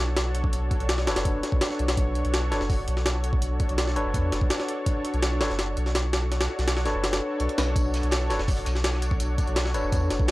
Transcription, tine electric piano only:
1.07 2.50 D4 medium
1.07 2.50 A4 medium
1.07 2.50 B4 medium
1.07 2.50 C#5 loud
2.51 2.62 D4 medium
2.51 2.62 A4 medium
2.51 2.62 B4 medium
2.51 2.62 C#5 loud
3.96 5.39 D4 medium
3.96 5.39 A4 medium
3.96 5.39 B4 medium
3.96 5.39 C#5 loud
5.41 5.51 D4 medium
5.41 5.51 A4 medium
5.41 5.51 B4 medium
5.41 5.51 C#5 loud
6.86 8.28 D4 medium
6.86 8.28 A4 medium
6.86 8.28 B4 medium
6.86 8.28 C#5 loud
8.30 8.40 D4 medium
8.30 8.40 A4 medium
8.30 8.40 B4 medium
8.30 8.40 C#5 loud
9.74 10.31 D4 medium
9.74 10.31 A4 medium
9.74 10.31 B4 medium
9.74 10.31 C#5 loud

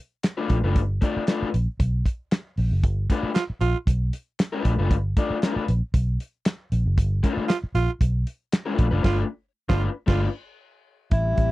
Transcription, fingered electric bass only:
0.50 0.62 A#1 medium
0.64 0.76 F#1 medium
0.76 0.98 G1 loud
1.17 muted fingered electric bass stroke soft
1.42 muted fingered electric bass stroke soft
1.54 1.66 A#1 medium
1.79 2.02 B1 medium
2.58 2.70 A#1 medium
2.72 2.84 F#1 medium
2.84 3.06 G1 loud
3.23 muted fingered electric bass stroke soft
3.50 muted fingered electric bass stroke soft
3.61 3.73 A#1 loud
3.87 4.10 B1 loud
4.65 4.77 A#1 medium
4.78 4.91 F#1 medium
4.91 5.13 G1 loud
5.30 muted fingered electric bass stroke medium
5.56 muted fingered electric bass stroke medium
5.69 5.80 A#1 medium
5.94 6.17 B1 medium
6.72 6.84 A#1 medium
6.86 6.98 F#1 medium
6.98 7.20 G1 loud
7.37 muted fingered electric bass stroke soft
7.63 muted fingered electric bass stroke medium
7.75 7.87 A#1 medium
8.01 8.23 B1 medium
8.79 8.91 A#1 medium
8.91 9.02 F#1 medium
9.04 9.22 G1 loud
9.70 9.87 G1 loud
10.08 10.26 G1 loud
11.12 11.35 A1 medium
11.38 11.50 A1 medium

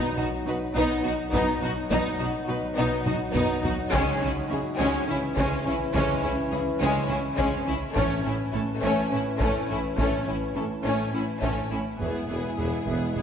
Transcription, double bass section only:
0.18 0.26 B1 soft
0.46 0.54 B1 soft
0.75 0.83 B1 medium
1.04 1.12 B1 soft
1.33 1.41 B1 medium
1.63 1.71 B1 soft
1.91 1.99 B1 medium
2.21 2.29 B1 soft
2.49 2.57 B1 soft
2.78 2.86 B1 medium
3.06 3.14 B1 soft
3.35 3.43 B1 medium
3.64 3.72 B1 soft
3.93 4.01 C#2 medium
4.22 4.30 C#2 medium
4.50 4.58 C#2 soft
4.79 4.87 C#2 medium
5.08 5.16 C#2 soft
5.37 5.45 C#2 medium
5.66 5.74 C#2 soft
5.94 6.02 C#2 medium
6.23 6.31 C#2 soft
6.52 6.60 C#2 soft
6.81 6.89 C#2 medium
7.09 7.17 C#2 soft
7.39 7.47 C#2 medium
7.67 7.75 C#2 soft
7.96 8.04 A1 medium
8.25 8.33 A1 soft
8.54 8.62 A1 soft
8.82 8.90 A1 medium
9.11 9.19 A1 soft
9.40 9.48 A1 medium
9.69 9.77 A1 soft
9.98 10.06 A1 medium
10.27 10.35 A1 soft
10.56 10.64 A1 soft
10.85 10.93 A1 medium
11.14 11.22 A1 soft
11.42 11.50 A1 soft
11.71 11.79 A1 soft
12.00 12.08 E1 soft
12.29 12.37 E1 soft
12.58 12.66 E1 soft
12.86 12.94 E1 soft
13.15 13.22 E1 soft

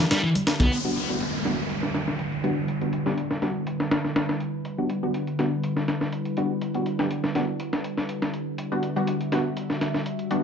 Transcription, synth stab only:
0.84 0.97 G3 medium
0.84 0.97 B3 medium
0.84 0.97 D4 medium
0.84 0.97 F#4 medium
1.09 1.29 G3 medium
1.09 1.29 B3 medium
1.09 1.29 D4 medium
1.09 1.29 F#4 medium
1.45 1.59 G3 medium
1.45 1.59 B3 medium
1.45 1.59 D4 medium
1.45 1.59 F#4 medium
2.44 2.57 G3 medium
2.44 2.57 B3 medium
2.44 2.57 D4 medium
2.44 2.57 F#4 medium
2.81 3.03 G3 medium
2.81 3.03 B3 medium
2.81 3.03 D4 medium
2.81 3.03 F#4 medium
3.06 3.18 G3 medium
3.06 3.18 B3 medium
3.06 3.18 D4 medium
3.06 3.18 G4 loud
3.42 3.63 G3 medium
3.42 3.63 B3 medium
3.42 3.63 D4 medium
3.42 3.63 F#4 medium
4.78 4.90 G3 medium
4.78 4.90 B3 medium
4.78 4.90 D4 medium
4.78 4.90 F#4 medium
5.03 5.23 G3 medium
5.03 5.23 B3 medium
5.03 5.23 D4 medium
5.03 5.23 F#4 medium
5.39 5.52 G3 medium
5.39 5.52 B3 medium
5.39 5.52 D4 medium
5.39 5.52 F#4 medium
6.37 6.51 G3 medium
6.37 6.51 B3 medium
6.37 6.51 D4 medium
6.37 6.51 F#4 medium
6.75 6.96 G3 medium
6.75 6.96 B3 medium
6.75 6.96 D4 medium
6.75 6.96 F#4 medium
6.99 7.11 G3 medium
6.99 7.11 B3 medium
6.99 7.11 D4 medium
6.99 7.11 G4 medium
7.36 7.56 G3 medium
7.36 7.56 B3 medium
7.36 7.56 D4 medium
7.36 7.56 F#4 medium
8.72 8.84 G3 medium
8.72 8.84 B3 medium
8.72 8.84 D4 medium
8.72 8.84 F#4 medium
8.96 9.16 G3 medium
8.96 9.16 B3 medium
8.96 9.16 D4 medium
8.96 9.16 F#4 medium
9.32 9.46 G3 medium
9.32 9.46 B3 medium
9.32 9.46 D4 medium
9.32 9.46 F#4 medium
10.31 10.43 G3 medium
10.31 10.43 B3 medium
10.31 10.43 D4 medium
10.31 10.43 F#4 medium

